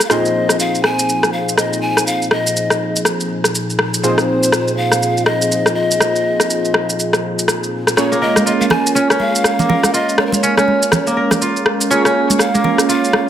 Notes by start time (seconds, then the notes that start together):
0.01 F5, shaker
0.10 A#2 F3 C4 D#4 F4 G#4 C5 D#5, cross-stick, shaker
0.25 shaker
0.49 cross-stick, shaker
0.59 F5, shaker
0.75 shaker
0.84 G#5, cross-stick
0.99 shaker
1.09 shaker
1.23 cross-stick, shaker
1.33 F5
1.49 shaker
1.57 D#5, cross-stick, shaker
1.73 shaker
1.81 G#5
1.97 cross-stick, shaker
2.06 F5, shaker
2.22 shaker
2.31 D#5, cross-stick
2.47 shaker
2.56 shaker
2.70 cross-stick, shaker
2.96 shaker
3.05 cross-stick, shaker
3.20 shaker
3.44 cross-stick, shaker
3.55 shaker
3.70 shaker
3.79 cross-stick
3.94 shaker
4.03 A#2 C4 D#4 F4 G#4 C5, shaker
4.18 cross-stick, shaker
4.43 shaker
4.52 cross-stick, shaker
4.68 shaker
4.77 F5
4.92 cross-stick, shaker
5.03 shaker
5.17 shaker
5.26 D#5, cross-stick
5.42 shaker
5.52 shaker
5.66 cross-stick, shaker
5.75 D#5
5.91 shaker
6.00 cross-stick, shaker
6.16 shaker
6.40 cross-stick, shaker
6.50 shaker
6.65 shaker
6.74 cross-stick
6.89 shaker
6.99 shaker
7.13 cross-stick, shaker
7.39 shaker
7.48 cross-stick, shaker
7.63 shaker
7.87 cross-stick, shaker
7.97 G#3 A#3 C#4 F4 G#4 A#4 C#5, cross-stick, shaker
8.12 A#3, shaker
8.22 A#4 D#5
8.36 cross-stick, high conga, shaker
8.46 F4 D#5, shaker
8.61 F5, high conga, shaker
8.70 G#5, cross-stick, high conga, low conga
8.87 shaker
8.95 C#4 G#5, shaker
9.10 C#4, cross-stick, shaker
9.20 F5, high conga
9.35 shaker
9.44 cross-stick, shaker
9.59 A#3, low conga, shaker
9.69 A#4, low conga
9.83 cross-stick, high conga, shaker
9.94 F4 D#5, shaker
10.09 shaker
10.18 C#5, cross-stick
10.26 A#4
10.32 C#5, high conga, shaker
10.43 C#4, shaker
10.57 C#4, cross-stick, high conga, shaker
10.68 high conga
10.83 shaker
10.92 cross-stick, low conga, shaker
11.07 A#3, shaker
11.17 A#4
11.31 cross-stick, high conga, low conga, shaker
11.41 F4, shaker
11.56 shaker
11.66 cross-stick
11.81 shaker
11.90 A#3 C#4 F4 G#4 C#5, shaker
12.05 C#4, cross-stick, shaker
12.30 high conga, shaker
12.39 F5, cross-stick, shaker
12.54 A#3, high conga, shaker
12.64 A#4, high conga, low conga
12.78 cross-stick, shaker
12.89 F4 F5, shaker
13.04 shaker
13.13 cross-stick, high conga